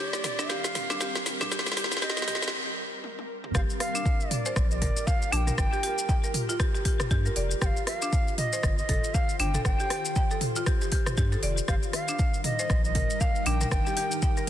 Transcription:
Already playing: D#3 G3 C4 A#4
0.00 D5
0.13 snare, shaker
0.24 snare, mid tom, open hi-hat, shaker
0.39 D4, snare, shaker
0.49 G4 F5, snare, shaker
0.64 snare, shaker
0.75 snare, mid tom, open hi-hat, shaker
0.90 D4, snare, shaker
1.01 G4, snare, shaker
1.15 snare, shaker
1.26 snare, open hi-hat, shaker
1.41 D4, snare, mid tom, shaker
1.52 G4, snare, shaker
1.59 snare
1.66 snare, shaker
1.72 snare
1.77 G4, snare, open hi-hat, shaker
1.84 snare
1.92 snare, shaker
1.97 snare
2.02 G4 D#5, snare, shaker
2.10 snare
2.17 snare, shaker
2.22 snare
2.28 G4, snare, mid tom, open hi-hat, shaker
2.35 snare
2.42 snare, shaker
2.48 snare
3.04 high tom
3.19 high tom
3.44 mid tom
3.55 G1 F4 G4 A#4 F5, kick, cross-stick, shaker
3.70 shaker
3.80 F5, cross-stick, open hi-hat
3.95 D4, shaker
4.06 kick, shaker
4.20 shaker
4.30 D5, mid tom, open hi-hat
4.46 C5, shaker
4.56 A#1, kick, cross-stick, shaker
4.71 D5 D#5, shaker
4.82 G1 A#4, kick, mid tom, open hi-hat
4.97 shaker
5.07 F5, kick, shaker
5.22 shaker
5.32 A#1 D4 A5, open hi-hat
5.36 G5
5.47 A#4, mid tom, shaker
5.58 G1 G5, kick, cross-stick, shaker
5.73 G4, shaker
5.83 G4, open hi-hat
5.98 shaker
6.09 G5, kick, shaker
6.24 A#4, shaker
6.34 mid tom, open hi-hat
6.49 F4, shaker
6.60 G4, kick, cross-stick, shaker
6.74 G4, shaker
6.85 G4, kick, open hi-hat
7.00 cross-stick, mid tom, shaker
7.11 G2 G4, kick, shaker
7.26 A#4, shaker
7.36 F1 D5, open hi-hat
7.51 shaker
7.61 G1 D#3 G4 C5 G5, kick, cross-stick, shaker
7.66 F5
7.77 shaker
7.87 F5, cross-stick, open hi-hat
8.02 D4, shaker
8.13 kick, shaker
8.28 shaker
8.38 D#5, mid tom, open hi-hat
8.53 C5, shaker
8.63 G1, kick, cross-stick, shaker
8.78 D#5, shaker
8.89 G1 A4, kick, mid tom, open hi-hat
9.04 shaker
9.14 F5, kick, shaker
9.29 shaker
9.39 G1 D4 G5, open hi-hat
9.54 A4, mid tom, shaker
9.65 G1 G5, kick, cross-stick, shaker
9.80 G4, shaker
9.90 G4, cross-stick, open hi-hat
10.05 shaker
10.16 G5, kick, shaker
10.31 A4, shaker
10.41 mid tom, open hi-hat
10.56 F4, shaker
10.66 G4, kick, cross-stick, shaker
10.81 G4, shaker
10.92 G4, kick, open hi-hat
11.06 cross-stick, mid tom, shaker
11.17 G2 G4, kick, shaker
11.32 A4, shaker
11.43 F1 D5, open hi-hat
11.58 shaker
11.68 G1 G3 D#4 G4 A#4 F5, kick, cross-stick, shaker
11.83 shaker
11.93 F5, cross-stick, open hi-hat
12.08 D4, shaker
12.19 kick, shaker
12.34 shaker
12.44 D#5, mid tom, open hi-hat
12.59 C5, shaker
12.70 A#1, kick, cross-stick, shaker
12.84 D#5, shaker
12.95 G1 A#4, kick, mid tom, open hi-hat
13.10 shaker
13.20 F5, kick, shaker
13.36 shaker
13.46 A#1 D4 G5, open hi-hat
13.61 A#4, mid tom, shaker
13.71 G1 G5, kick, cross-stick, shaker
13.86 G4, shaker
13.97 G4, open hi-hat
14.12 shaker
14.22 G5, kick, shaker
14.37 A#4, shaker

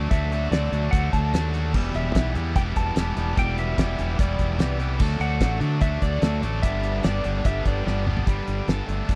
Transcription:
Already playing: F#3 A3 D4 F#4
0.11 D2 D3 F#3 A3 D4 F#4 E5, kick, closed hi-hat
0.32 A3 D4 F#4, closed hi-hat
0.51 D2 D3 F#3 A3 D4 F#4 D5, snare, closed hi-hat
0.64 snare
0.72 D2 F#3 A3 D4 F#4, closed hi-hat
0.91 D2 D3 F#3 A3 D4 F#4 F#5, kick, closed hi-hat
1.13 D2 A5, kick, closed hi-hat
1.34 D#2 D3 F#3 A3 D4 F#4, snare, closed hi-hat
1.53 F#3 A3 D4 F#4, closed hi-hat
1.74 E1 E2 B2 E3 G3 B3 E4 G4, kick, crash
1.94 E1 E3 G3 B3 G4 E5, closed hi-hat
2.15 B1 E3 G3 B3 E4 G4, kick, snare, closed hi-hat
2.35 E2 E3 G3 B3 E4 G4, closed hi-hat
2.56 E1 E2 B2 E3 G3 B3 E4 G4 G5, kick, closed hi-hat
2.76 E1 A5, kick, closed hi-hat
2.96 E1 E3 G3 B3 E4 G4, snare, closed hi-hat
3.15 E1 B3 E4 G4, closed hi-hat
3.19 E3 G3
3.37 E1 E2 B2 E3 G3 B3 E4 G4 G5, kick, closed hi-hat
3.58 E3 G3 B3 G4 E5, closed hi-hat
3.78 E1 E3 G3 B3 E4 G4, kick, snare, closed hi-hat
3.97 E1 E3 G3 B3 E4 G4, closed hi-hat
4.18 E1 E2 B2 E3 G3 B3 E4 G4 D5, kick, closed hi-hat
4.39 E1, kick, closed hi-hat
4.59 C2 E3 G3 B3 E4 G4, snare, closed hi-hat
4.78 E3 G3 B3 E4 G4, closed hi-hat
4.99 D2 D3 F#3 A3 D4 F#4, kick, crash
5.20 D2 A3 D4 F#4 F#5, closed hi-hat
5.40 A1 D3 F#3 A3 D4 F#4, kick, snare, closed hi-hat
5.61 D3 F#3 A3 D4 F#4, closed hi-hat
5.81 D2 D3 F#3 A3 D4 F#4 E5, kick, closed hi-hat
6.02 D2 D5, kick, closed hi-hat
6.22 D2 D3 F#3 A3 D4 F#4, snare, closed hi-hat
6.42 A1 F#3 A3 D4 F#4, closed hi-hat
6.62 G1 G2 D3 G3 B3 D4 G4 E5, kick, closed hi-hat
6.83 G3 B3 D4 G4, closed hi-hat
7.03 G1 G2 D3 G3 B3 D4 G4 D5, snare, closed hi-hat
7.24 G1 G3 B3 D4 G4, closed hi-hat
7.45 G1 G2 D3 G3 B3 D4 G4 E5, kick, closed hi-hat
7.65 G1 D5, kick, closed hi-hat
7.84 G1 D3 G3 B3 D4 G4, snare
8.07 G3 B3 D4 G4, mid tom
8.17 floor tom
8.27 G1 G2 D3 G3 B3 D4 G4, kick, closed hi-hat
8.48 G1, closed hi-hat
8.68 G1 A4, snare, closed hi-hat
8.87 G1 A3, closed hi-hat
9.08 G1 D4, kick, closed hi-hat

